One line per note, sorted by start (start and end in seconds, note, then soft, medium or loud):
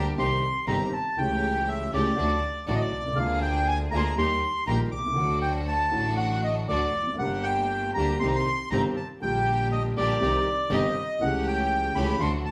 0.00 0.14 D2 medium
0.00 0.14 D3 medium
0.00 0.14 G3 soft
0.00 0.14 A#3 soft
0.00 0.14 A#3 medium
0.00 0.14 D4 medium
0.00 0.14 G4 medium
0.17 0.39 C2 medium
0.17 0.39 C3 medium
0.17 0.39 D#3 medium
0.17 0.39 G3 soft
0.17 0.39 C4 soft
0.17 0.39 D#4 soft
0.17 0.39 G4 medium
0.17 0.65 C6 medium
0.67 0.89 G1 medium
0.67 0.88 G2 medium
0.67 0.88 D#3 medium
0.67 0.89 G3 soft
0.67 0.89 C4 medium
0.67 0.89 C4 soft
0.67 0.89 D#4 soft
0.67 0.89 G4 medium
0.67 0.91 A#5 medium
0.93 1.19 A5 medium
1.16 1.89 C#2 medium
1.16 1.89 C#3 medium
1.16 1.88 E3 medium
1.16 1.88 A3 medium
1.16 1.89 A3 soft
1.16 1.88 C#4 soft
1.16 1.89 C#4 soft
1.16 1.88 G4 medium
1.16 1.69 G5 medium
1.21 1.90 G4 soft
1.68 1.91 E5 medium
1.92 2.14 C#2 medium
1.92 2.14 C#3 medium
1.92 2.14 E3 medium
1.92 2.13 A3 medium
1.92 2.14 A3 soft
1.92 2.13 C#4 medium
1.92 2.14 C#4 soft
1.92 2.13 G4 medium
1.92 2.14 G4 medium
1.92 2.66 D5 medium
2.16 2.38 D2 medium
2.16 2.38 D3 medium
2.16 2.38 F#3 soft
2.16 2.38 A3 soft
2.16 2.38 D4 soft
2.16 2.38 F#4 medium
2.67 2.89 A1 medium
2.67 2.89 A2 medium
2.67 2.89 D3 soft
2.67 2.89 F#3 soft
2.67 2.88 A3 medium
2.67 2.89 A3 soft
2.67 2.88 D4 soft
2.67 2.88 F#4 medium
2.67 2.89 F#4 medium
2.67 2.74 D5 medium
2.75 2.81 D#5 medium
2.81 3.18 D5 medium
2.92 3.17 C2 soft
3.00 3.05 B1 soft
3.05 3.11 C2 soft
3.12 3.18 C#2 medium
3.12 3.17 D3 medium
3.12 3.40 F5 medium
3.16 3.89 D2 medium
3.16 3.88 D3 medium
3.16 3.88 G#3 soft
3.16 3.89 A#3 soft
3.16 3.89 A#3 medium
3.16 3.89 D4 medium
3.16 3.89 F4 medium
3.16 3.89 G#4 medium
3.42 3.68 G5 medium
3.67 3.78 G#5 medium
3.91 4.13 D2 medium
3.91 4.13 D3 medium
3.91 4.13 G#3 soft
3.91 4.13 A#3 medium
3.91 4.13 D4 medium
3.91 4.13 F4 medium
3.91 4.14 G#4 medium
3.91 3.97 A#5 medium
3.97 4.04 C6 medium
4.03 4.16 A#5 medium
4.16 4.37 D#2 medium
4.16 4.38 D#2 medium
4.16 4.37 D#3 medium
4.16 4.37 G3 medium
4.16 4.38 A#3 soft
4.16 4.38 A#3 medium
4.16 4.38 D#4 medium
4.16 4.38 G4 medium
4.16 4.64 C6 medium
4.67 4.88 A#1 medium
4.67 4.88 A#2 medium
4.67 4.88 D#3 medium
4.67 4.88 G3 soft
4.67 4.88 A#3 medium
4.67 4.88 A#3 soft
4.67 4.88 D#4 soft
4.67 4.88 G4 medium
4.67 4.78 A#5 medium
4.92 5.17 C2 soft
4.92 5.39 D6 medium
4.98 5.05 B1 soft
5.05 5.11 C2 soft
5.11 5.17 C#2 medium
5.11 5.88 D3 medium
5.11 5.88 F#3 soft
5.16 5.88 D2 medium
5.16 5.89 D2 medium
5.16 5.88 A3 soft
5.16 5.89 A3 medium
5.16 5.89 D4 soft
5.16 5.89 F#4 medium
5.42 5.53 G5 medium
5.68 6.15 A5 medium
5.90 6.64 A1 medium
5.90 6.66 A1 medium
5.90 6.65 A2 medium
5.90 6.64 D3 medium
5.90 6.64 F#3 soft
5.90 6.65 A3 soft
5.90 6.65 A3 medium
5.90 6.65 D4 medium
5.90 6.65 F#4 medium
6.17 6.41 F#5 medium
6.44 6.55 D#5 medium
6.68 6.90 D2 medium
6.68 6.91 D2 medium
6.68 6.90 D3 medium
6.68 6.90 F#3 soft
6.68 6.90 A3 soft
6.68 6.91 A3 medium
6.68 6.91 D4 soft
6.68 6.90 F#4 medium
6.68 6.91 F#4 medium
6.68 7.16 D5 medium
6.95 7.20 F1 soft
7.01 7.07 E2 soft
7.06 7.13 F2 soft
7.14 7.20 F#2 soft
7.14 7.90 D3 soft
7.18 7.92 G1 medium
7.18 7.93 G1 medium
7.18 7.92 G2 medium
7.18 7.91 G3 soft
7.18 7.92 A#3 soft
7.18 7.92 A#3 medium
7.18 7.92 D4 medium
7.18 7.92 G4 medium
7.18 7.45 F#5 medium
7.43 7.91 G5 medium
7.94 8.17 D2 medium
7.94 8.17 D3 medium
7.94 8.17 G3 soft
7.94 8.17 A#3 soft
7.94 8.18 A#3 medium
7.94 8.18 D4 medium
7.94 8.17 G4 medium
7.94 8.18 G4 medium
7.94 8.18 A#5 medium
8.20 8.42 C2 medium
8.20 8.43 C2 medium
8.20 8.42 C3 medium
8.20 8.42 D#3 medium
8.20 8.42 G3 soft
8.20 8.42 C4 soft
8.20 8.42 C4 medium
8.20 8.42 D#4 soft
8.20 8.42 G4 medium
8.20 8.43 G4 medium
8.20 8.27 C6 medium
8.28 8.35 A#5 medium
8.35 8.69 C6 medium
8.71 8.93 G1 medium
8.71 8.93 G2 medium
8.71 8.92 D#3 medium
8.71 8.92 G3 soft
8.71 8.92 C4 medium
8.71 8.93 C4 soft
8.71 8.92 D#4 medium
8.71 8.93 G4 medium
8.71 8.82 A#5 medium
8.97 9.08 A5 medium
9.20 9.93 A#1 medium
9.20 9.93 A#2 medium
9.20 9.92 D3 medium
9.20 9.93 G3 soft
9.20 9.93 A#3 medium
9.20 9.93 A#3 soft
9.20 9.93 D4 soft
9.20 9.93 G4 medium
9.20 9.68 G5 medium
9.24 9.94 G4 medium
9.72 9.83 D#5 medium
9.97 10.18 A#1 medium
9.97 10.18 A#2 medium
9.97 10.18 D3 medium
9.97 10.18 G3 soft
9.97 10.18 A#3 soft
9.97 10.18 A#3 medium
9.97 10.18 D4 medium
9.97 10.18 G4 medium
9.97 10.74 D5 medium
10.20 10.42 C2 medium
10.20 10.42 C3 medium
10.20 10.42 D#3 soft
10.20 10.42 G3 medium
10.20 10.42 C4 medium
10.20 10.43 C4 medium
10.20 10.43 D#4 soft
10.20 10.42 G4 medium
10.20 10.43 G4 medium
10.69 10.92 G1 medium
10.69 10.92 G2 medium
10.69 10.91 D#3 soft
10.69 10.91 G3 soft
10.69 10.91 C4 soft
10.69 10.92 C4 medium
10.69 10.92 D#4 medium
10.69 10.92 G4 medium
10.74 11.24 D#5 medium
11.20 11.92 C#2 medium
11.20 11.93 C#2 medium
11.20 11.93 C#3 medium
11.20 11.92 E3 medium
11.20 11.92 A3 medium
11.20 11.92 C#4 medium
11.20 11.93 C#4 soft
11.20 11.92 G4 medium
11.20 11.47 F#5 medium
11.24 11.94 G4 medium
11.47 11.98 G5 medium
11.95 12.17 C#2 medium
11.95 12.17 C#3 medium
11.95 12.17 E3 medium
11.95 12.16 A3 medium
11.95 12.17 A3 medium
11.95 12.17 C#4 medium
11.95 12.17 C#4 soft
11.95 12.17 G4 medium
11.95 12.21 B5 medium
12.19 12.41 D2 medium
12.19 12.42 D2 medium
12.19 12.41 D3 medium
12.19 12.41 F#3 soft
12.19 12.41 A3 medium
12.19 12.42 A3 soft
12.19 12.41 D4 medium
12.19 12.41 F#4 medium
12.19 12.42 F#4 medium
12.19 12.32 C6 medium
12.45 12.51 A5 medium